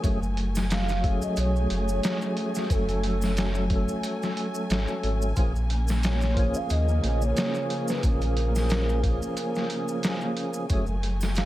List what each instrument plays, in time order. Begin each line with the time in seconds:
Already playing: string section G#5
0.02 sub bass F#1, tonewheel organ F#3 A3 C#4 G#4, string section F#3 A3, kick, closed hi-hat, maracas
0.23 maracas
0.37 closed hi-hat
0.55 snare, triangle, maracas
0.70 soft synth lead F5, snare, closed hi-hat, maracas
0.89 snare, maracas
1.01 tonewheel organ F#3 A3, kick, closed hi-hat
1.06 tonewheel organ C#4 G#4
1.22 soft synth lead D#5, maracas
1.36 sub bass B1, soft synth lead C#5, closed hi-hat, maracas
1.56 maracas
1.70 sub bass F#1, closed hi-hat
1.88 maracas
2.03 snare, closed hi-hat, maracas
2.21 maracas
2.37 closed hi-hat
2.55 snare, maracas
2.67 sub bass F#1, tonewheel organ F#3 A3, soft synth lead A4, kick, closed hi-hat, maracas
2.73 tonewheel organ C#4 A4
2.89 closed hi-hat, maracas
3.03 closed hi-hat
3.22 snare, triangle, maracas
3.37 snare, closed hi-hat, maracas
3.55 maracas
3.67 tonewheel organ F#3 A3, kick, closed hi-hat
3.73 tonewheel organ C#4 A4
3.89 maracas
4.03 closed hi-hat, maracas
4.22 snare, maracas
4.37 closed hi-hat
4.55 maracas
4.70 sub bass G#1, snare, closed hi-hat, maracas
4.88 maracas
5.03 sub bass G#1, closed hi-hat
5.22 maracas
5.36 sub bass A#1, string section C#3 A#3, tonewheel organ F3 A#3 C#4 G#4, kick, closed hi-hat, maracas
5.56 maracas
5.70 closed hi-hat
5.88 snare, triangle, maracas
6.03 soft synth lead C#5, snare, closed hi-hat, maracas
6.21 snare, maracas
6.34 tonewheel organ F3 A#3, kick, closed hi-hat
6.39 tonewheel organ C#4 G#4
6.54 soft synth lead F5, maracas
6.70 sub bass D#2, soft synth lead D#5, closed hi-hat, maracas
6.89 maracas
7.04 sub bass A#1, closed hi-hat
7.21 soft synth lead C#5, maracas
7.37 snare, closed hi-hat, maracas
7.55 maracas
7.70 closed hi-hat
7.88 soft synth lead B4, snare, maracas
8.01 sub bass A#1, tonewheel organ F3 A#3, soft synth lead A#4, kick, closed hi-hat, maracas
8.06 tonewheel organ C#4 G#4
8.21 closed hi-hat, maracas
8.37 closed hi-hat
8.55 snare, triangle, maracas
8.69 snare, closed hi-hat, maracas
8.89 maracas
9.01 tonewheel organ F3 A#3, kick, closed hi-hat
9.06 tonewheel organ C#4 G#4
9.22 maracas
9.37 closed hi-hat, maracas
9.55 snare, maracas
9.70 closed hi-hat
9.88 maracas
10.03 snare, closed hi-hat, maracas
10.21 maracas
10.37 closed hi-hat
10.54 maracas
10.69 sub bass F#1, tonewheel organ F#3 A3 C#4 G#4, string section F#3 A3 G#5, kick, closed hi-hat, maracas
10.87 maracas
11.03 closed hi-hat
11.21 snare, triangle, maracas
11.35 soft synth lead F5, snare, closed hi-hat, maracas